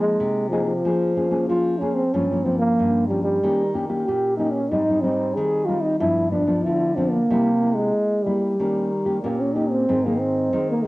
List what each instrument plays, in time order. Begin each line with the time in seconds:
Already playing: nylon-string guitar F3 A#3 D#4 G#4
0.00 trombone G#3
0.20 nylon-string guitar C3
0.49 trombone F3, nylon-string guitar A#3 D#4 G#4
0.65 trombone F3
0.85 nylon-string guitar F3 A#3 C#4 G#4
1.16 nylon-string guitar A#3 C#4 G#4
1.31 nylon-string guitar A#3 C#4 G#4
1.48 nylon-string guitar F3, trombone F4
1.78 nylon-string guitar A#3 C#4 G#4, trombone C#4
1.95 trombone C4
2.13 nylon-string guitar G2 F3 A#3 C#4, trombone C#4
2.31 nylon-string guitar F3 A#3 C#4
2.44 nylon-string guitar F3 A#3 C#4, trombone C4
2.59 trombone A#3
2.79 nylon-string guitar G2
3.07 nylon-string guitar F3 A#3 C#4, trombone G3
3.24 trombone G3
3.43 nylon-string guitar D#3 A#3 C#4 G4
3.74 nylon-string guitar A#3 C#4 G4
3.89 nylon-string guitar A#3 C#4 G4
4.06 nylon-string guitar A#2, trombone G4
4.37 nylon-string guitar A#3 C#4 G4, trombone D#4
4.51 trombone C#4
4.70 nylon-string guitar G#2 G3 C4 D#4, trombone D#4
4.89 nylon-string guitar G3 C4 D#4
5.01 nylon-string guitar G3 C4 D#4, trombone C4
5.36 nylon-string guitar D#3, trombone G#4
5.66 nylon-string guitar G3 C4 D#4, trombone F4
5.81 trombone D#4
6.00 nylon-string guitar G2 F3 B3 D4, trombone E4
6.31 nylon-string guitar F3 B3 D4, trombone D4
6.47 nylon-string guitar F3 B3 D4
6.65 nylon-string guitar D3, trombone E4
6.96 nylon-string guitar F3 B3 D4, trombone C4
7.10 trombone A#3
7.31 nylon-string guitar C3 G3 A#3 E4
7.62 nylon-string guitar A#3 E4
7.74 trombone G#3
8.24 trombone G3, nylon-string guitar G3 A#3 E4
8.60 nylon-string guitar D#3 A#3 C#4 G4
9.05 nylon-string guitar A#3 C#4 G4
9.23 nylon-string guitar A#2 A#3 C#4 G4, trombone A#3
9.41 trombone C#4
9.55 nylon-string guitar A#3 C#4 G4, trombone D#4
9.70 trombone C4
9.89 nylon-string guitar G#2 D#3 G#3 C4
10.05 nylon-string guitar D#3 G#3 C4, trombone A#3
10.20 trombone C4
10.53 nylon-string guitar D#3 G#3 C4
10.70 trombone A#3
10.83 trombone G#3